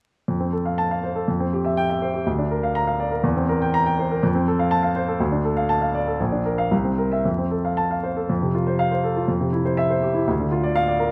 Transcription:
0.28 1.25 F2 soft
0.40 0.60 C4 soft
0.53 0.73 A4 soft
0.66 0.86 F5 soft
0.78 0.98 A5 medium
0.91 1.11 F5 soft
1.03 1.23 C5 soft
1.15 1.28 A4 soft
1.28 2.23 F2 soft
1.40 1.60 C4 soft
1.53 1.72 G4 soft
1.65 1.84 E5 soft
1.77 1.97 G5 medium
1.90 2.09 E5 soft
2.02 2.21 C5 soft
2.14 2.26 G4 soft
2.26 3.21 D2 soft
2.39 2.58 D4 soft
2.51 2.70 A#4 soft
2.63 2.83 F5 soft
2.75 2.95 A#5 medium
2.87 3.07 F5 soft
3.00 3.19 D5 soft
3.12 3.24 A#4 soft
3.24 4.19 E2 medium
3.36 3.56 C4 soft
3.49 3.69 A#4 medium
3.62 3.81 G5 medium
3.74 3.93 A#5 medium
3.86 4.06 G5 medium
3.99 4.18 C5 soft
4.11 4.23 A#4 soft
4.23 5.18 F2 medium
4.35 4.54 C4 soft
4.48 4.67 A4 soft
4.59 4.79 F5 medium
4.71 4.91 A5 medium
4.83 5.03 F5 soft
4.96 5.15 C5 soft
5.08 5.20 A4 soft
5.20 6.16 D2 medium
5.32 5.52 D4 soft
5.45 5.65 A4 soft
5.57 5.77 F5 soft
5.69 5.89 A5 medium
5.82 6.02 F5 soft
5.95 6.15 D5 soft
6.07 6.20 A4 soft
6.20 6.70 A#1 medium
6.32 6.53 D4 soft
6.46 6.66 A#4 soft
6.58 6.71 F5 medium
6.71 7.23 C2 medium
6.84 7.06 C4 soft
6.98 7.19 A#4 soft
7.12 7.25 E5 soft
7.25 8.27 F2 soft
7.38 7.59 C4 soft
7.51 7.72 A4 soft
7.65 7.85 F5 soft
7.77 7.98 A5 medium
7.91 8.12 F5 soft
8.03 8.24 C5 soft
8.17 8.29 A4 soft
8.29 9.26 F2 medium
8.42 8.62 C3 soft
8.55 8.74 F4 soft
8.67 8.87 C5 soft
8.79 8.99 F5 medium
8.91 9.11 C5 soft
9.04 9.24 A4 soft
9.16 9.29 F4 soft
9.28 10.24 F2 soft
9.40 9.60 C3 soft
9.53 9.73 E4 soft
9.65 9.85 C5 soft
9.77 9.97 E5 medium
9.90 10.10 C5 soft
10.02 10.22 G4 soft
10.14 10.27 E4 soft
10.27 11.12 D2 medium
10.40 10.59 D3 soft
10.52 10.71 F4 soft
10.63 10.83 D5 soft
10.76 10.95 F5 medium
10.88 11.07 D5 soft
10.99 11.12 A#4 soft

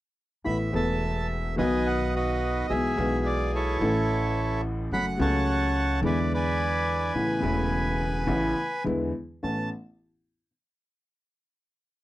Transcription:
0.44 0.69 A1 soft
0.44 0.70 A1 soft
0.44 0.69 A2 soft
0.44 0.69 E3 soft
0.44 0.69 A3 soft
0.44 0.69 B3 soft
0.44 0.69 A4 soft
0.44 0.75 E5 soft
0.44 0.58 B5 medium
0.71 1.54 E1 medium
0.71 1.54 E2 medium
0.71 1.53 E3 medium
0.71 1.54 A3 soft
0.71 1.54 B3 soft
0.76 1.55 A4 medium
0.76 1.55 E5 medium
0.76 1.27 A5 medium
1.56 2.64 B1 medium
1.56 2.65 B1 medium
1.56 2.64 B2 medium
1.56 2.63 D#3 medium
1.56 2.64 F#3 soft
1.56 2.65 B3 soft
1.56 2.14 B4 medium
1.56 2.15 D#5 medium
1.56 1.87 G#5 medium
1.60 2.65 F#4 medium
1.87 2.15 F#5 medium
2.15 2.67 F#4 soft
2.15 2.67 B4 soft
2.15 2.73 D#5 medium
2.69 2.93 B1 soft
2.69 2.93 B2 soft
2.69 2.93 E3 soft
2.69 2.93 G#3 soft
2.69 2.93 B3 soft
2.69 2.93 F#4 soft
2.69 3.78 G#4 medium
2.69 3.27 E5 medium
2.96 3.77 B1 medium
2.96 3.77 B2 medium
2.96 3.76 E3 medium
2.96 3.77 G#3 soft
2.96 3.78 B3 soft
2.96 3.78 F#4 medium
3.26 3.52 D5 medium
3.55 4.61 E4 soft
3.55 4.61 A4 soft
3.55 4.61 C#5 medium
3.79 4.87 A1 medium
3.79 4.86 A2 medium
3.79 4.85 E3 medium
3.79 4.86 A3 medium
3.79 4.87 C#4 medium
3.83 4.88 A4 medium
4.91 5.15 F#1 medium
4.91 5.16 F#2 soft
4.91 5.16 F#3 soft
4.91 5.16 A3 soft
4.91 5.16 C#4 soft
4.91 5.16 A4 soft
4.91 5.19 F#5 medium
4.91 5.06 B5 medium
5.18 5.99 C#2 medium
5.18 5.99 C#3 medium
5.18 5.98 F#3 medium
5.18 5.99 A3 medium
5.18 5.99 C#4 medium
5.18 6.00 C#5 medium
5.18 6.00 F#5 medium
5.18 6.00 A5 medium
5.22 6.00 A4 medium
6.01 7.10 E2 medium
6.01 7.09 D3 medium
6.01 7.10 E3 medium
6.01 7.10 G#3 medium
6.01 7.11 B3 medium
6.01 7.11 E4 medium
6.01 6.33 B4 medium
6.06 6.32 D5 medium
6.06 6.19 G#5 medium
6.34 8.83 B4 medium
6.34 7.13 D5 medium
6.34 8.84 G#5 medium
7.15 7.39 A1 soft
7.15 7.39 A2 soft
7.15 7.39 C#3 soft
7.15 7.39 A3 soft
7.15 7.39 B3 soft
7.15 7.39 E4 soft
7.40 8.24 E1 medium
7.40 8.24 E2 medium
7.40 8.23 C#3 medium
7.40 8.23 A3 soft
7.40 8.24 B3 medium
7.45 8.25 E4 medium
8.27 8.52 A1 medium
8.27 8.52 A2 medium
8.27 8.52 C#3 medium
8.27 8.52 A3 soft
8.27 8.52 B3 medium
8.27 8.52 E4 medium
8.84 9.10 E2 medium
8.84 9.11 E2 medium
8.84 9.09 D3 soft
8.84 9.10 E3 medium
8.84 9.10 G#3 soft
8.84 9.10 B3 soft
8.84 9.10 E4 medium
9.43 9.67 A1 soft
9.43 9.67 A3 soft
9.43 9.67 B3 soft
9.43 9.67 C#4 soft
9.43 9.70 A5 medium

